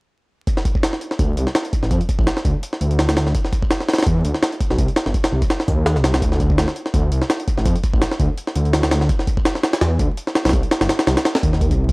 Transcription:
0.47 kick, closed hi-hat
0.57 snare
0.65 kick, closed hi-hat
0.75 kick
0.83 snare, closed hi-hat
0.93 snare
1.01 closed hi-hat
1.11 snare
1.19 detuned saw bass D2, kick, closed hi-hat
1.37 detuned saw bass C2, closed hi-hat
1.47 snare
1.55 snare, closed hi-hat
1.65 closed hi-hat
1.73 kick, closed hi-hat
1.83 detuned saw bass A1, snare
1.91 detuned saw bass F2, kick, closed hi-hat
2.01 closed hi-hat
2.09 kick, closed hi-hat
2.19 detuned saw bass A1, kick
2.27 snare, closed hi-hat
2.37 snare
2.45 detuned saw bass D2, kick, closed hi-hat
2.63 closed hi-hat
2.73 snare
2.81 detuned saw bass D2, closed hi-hat
2.91 closed hi-hat
2.99 snare, closed hi-hat
3.09 snare, closed hi-hat
3.17 snare, closed hi-hat
3.27 snare
3.35 kick, closed hi-hat
3.45 snare
3.53 kick, closed hi-hat
3.63 kick
3.71 snare, closed hi-hat
3.81 snare
3.89 snare, closed hi-hat
3.94 snare, closed hi-hat
3.98 snare, closed hi-hat
4.03 detuned saw bass E2, snare, closed hi-hat
4.07 kick, closed hi-hat
4.24 detuned saw bass D2, closed hi-hat
4.34 snare
4.43 snare, closed hi-hat
4.52 closed hi-hat
4.60 kick, closed hi-hat
4.70 detuned saw bass B1, snare
4.78 detuned saw bass C2, kick, closed hi-hat
4.88 closed hi-hat
4.96 snare, closed hi-hat
5.06 detuned saw bass G1, snare
5.14 kick, closed hi-hat
5.24 snare, closed hi-hat
5.32 detuned saw bass C2
5.42 kick, closed hi-hat
5.50 snare, closed hi-hat
5.60 snare
5.68 detuned saw bass D#2, kick, closed hi-hat
5.86 snare, closed hi-hat
5.96 detuned saw bass C2, snare
6.04 snare, closed hi-hat
6.14 snare, closed hi-hat
6.22 detuned saw bass D2, kick, closed hi-hat
6.32 snare
6.40 kick, closed hi-hat
6.50 kick
6.58 snare, closed hi-hat
6.68 snare
6.76 closed hi-hat
6.86 snare
6.94 detuned saw bass D2, kick, closed hi-hat
7.12 detuned saw bass C2, closed hi-hat
7.22 snare
7.30 snare, closed hi-hat
7.40 closed hi-hat
7.48 kick, closed hi-hat
7.58 detuned saw bass A1, snare
7.66 detuned saw bass F2, kick, closed hi-hat
7.76 closed hi-hat
7.84 kick, closed hi-hat
7.93 detuned saw bass A1, kick
8.02 snare, closed hi-hat
8.11 snare
8.20 detuned saw bass D2, kick, closed hi-hat
8.37 closed hi-hat
8.47 snare
8.55 detuned saw bass D2, closed hi-hat
8.65 closed hi-hat
8.73 snare, closed hi-hat
8.83 snare, closed hi-hat
8.91 snare, closed hi-hat
9.01 snare
9.09 kick, closed hi-hat
9.19 snare
9.27 kick, closed hi-hat
9.37 kick
9.45 snare, closed hi-hat
9.55 snare
9.63 snare, closed hi-hat
9.73 snare, closed hi-hat
9.81 detuned saw bass E2, snare, closed hi-hat
9.99 detuned saw bass D2, kick, closed hi-hat
10.17 closed hi-hat
10.27 snare
10.35 snare, closed hi-hat
10.45 detuned saw bass B1, snare, closed hi-hat
10.49 snare, closed hi-hat
10.53 detuned saw bass C2, kick, closed hi-hat
10.63 closed hi-hat
10.71 snare, closed hi-hat
10.81 detuned saw bass G1, snare, closed hi-hat
10.89 snare, closed hi-hat
10.99 snare, closed hi-hat
11.07 detuned saw bass C2, snare, closed hi-hat
11.17 snare, closed hi-hat
11.25 snare, closed hi-hat
11.35 snare, closed hi-hat
11.43 detuned saw bass D#2, kick, closed hi-hat
11.53 snare
11.61 kick, closed hi-hat
11.71 detuned saw bass C2, kick, closed hi-hat
11.89 kick, closed hi-hat

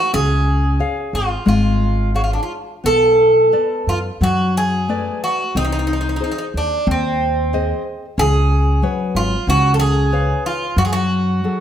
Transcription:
Already playing: bouzouki F#4
0.13 upright bass C#2, nylon-string guitar C#4, bouzouki G#4
0.79 nylon-string guitar G#4 C#5 F5
1.13 upright bass G#1, bouzouki F4
1.46 upright bass G#1, nylon-string guitar G#3, bouzouki F4
2.14 bouzouki F#4, nylon-string guitar G#4 C#5 F5
2.24 bouzouki F4
2.33 bouzouki D4
2.43 bouzouki F4
2.84 upright bass B1, nylon-string guitar B3, bouzouki A4
3.52 nylon-string guitar A4 B4 D5
3.87 upright bass F#2, bouzouki F4
4.21 upright bass F#2, nylon-string guitar F#3, bouzouki F#4
4.57 bouzouki G#4
4.89 nylon-string guitar A3 B4 D5
5.24 bouzouki F#4
5.55 upright bass C2, nylon-string guitar C4, bouzouki D#4
5.64 bouzouki D#4
5.72 bouzouki D#4
5.79 bouzouki D#4
5.87 bouzouki D#4
5.93 bouzouki D#4
6.01 bouzouki D#4
6.09 bouzouki D#4
6.16 bouzouki D#4, nylon-string guitar G#4
6.21 bouzouki D#4, nylon-string guitar C5
6.31 bouzouki D#4
6.38 bouzouki D#4
6.54 upright bass D#2, bouzouki D4
6.87 upright bass D#2, nylon-string guitar C4
6.91 bouzouki C4
7.53 nylon-string guitar G#4 C5 D#5
8.18 upright bass C#2, nylon-string guitar C#4, bouzouki G#4
8.82 nylon-string guitar F#3 B4 C#5
9.15 upright bass G#1, bouzouki F4
9.47 upright bass C#2, nylon-string guitar C#4, bouzouki F#4
9.74 bouzouki A4
9.80 bouzouki G#4
10.12 nylon-string guitar B4 C#5 F5
10.46 bouzouki F4
10.77 upright bass F#2, nylon-string guitar F#3, bouzouki F#4
10.85 bouzouki G#4
10.93 bouzouki F#4
11.44 nylon-string guitar F#3 G#4 A4

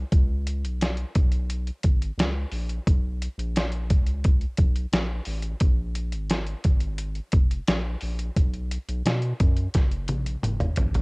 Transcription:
0.12 analog synth bass C#2, kick, closed hi-hat
0.47 closed hi-hat
0.63 analog synth bass B1, closed hi-hat
0.81 snare, closed hi-hat
0.97 closed hi-hat
1.15 analog synth bass B1, kick, closed hi-hat
1.32 closed hi-hat
1.50 closed hi-hat
1.67 closed hi-hat
1.83 analog synth bass G#1, kick, closed hi-hat
2.02 closed hi-hat
2.18 analog synth bass C#2, snare, closed hi-hat
2.52 analog synth bass A#1, open hi-hat
2.69 closed hi-hat
2.87 analog synth bass B1, kick, closed hi-hat
3.22 closed hi-hat
3.38 analog synth bass A#1, closed hi-hat
3.56 snare, closed hi-hat
3.72 closed hi-hat
3.90 analog synth bass C#2, kick, closed hi-hat
4.07 closed hi-hat
4.24 kick, closed hi-hat
4.41 closed hi-hat
4.57 analog synth bass B1, kick, closed hi-hat
4.76 closed hi-hat
4.93 analog synth bass A#1, snare, closed hi-hat
5.25 analog synth bass A1, open hi-hat
5.42 closed hi-hat
5.60 analog synth bass A#1, kick, closed hi-hat
5.95 closed hi-hat
6.12 analog synth bass G#1, closed hi-hat
6.30 snare, closed hi-hat
6.47 closed hi-hat
6.64 analog synth bass G#1, kick, closed hi-hat
6.80 closed hi-hat
6.98 closed hi-hat
7.15 closed hi-hat
7.32 analog synth bass F1, kick, closed hi-hat
7.51 closed hi-hat
7.68 analog synth bass A#1, snare, closed hi-hat
8.01 analog synth bass A#1, open hi-hat
8.19 closed hi-hat
8.36 analog synth bass B1, kick, closed hi-hat
8.54 closed hi-hat
8.71 closed hi-hat
8.89 analog synth bass B1, closed hi-hat
9.05 analog synth bass B2, snare, closed hi-hat
9.22 closed hi-hat
9.40 analog synth bass F#2, kick, closed hi-hat
9.56 closed hi-hat
9.74 analog synth bass F#1, kick, snare, closed hi-hat
9.91 closed hi-hat
10.08 analog synth bass A#1, closed hi-hat, high tom
10.26 closed hi-hat
10.43 analog synth bass F#1, closed hi-hat, mid tom
10.60 closed hi-hat, mid tom
10.76 analog synth bass A1, closed hi-hat, floor tom
10.94 closed hi-hat, floor tom

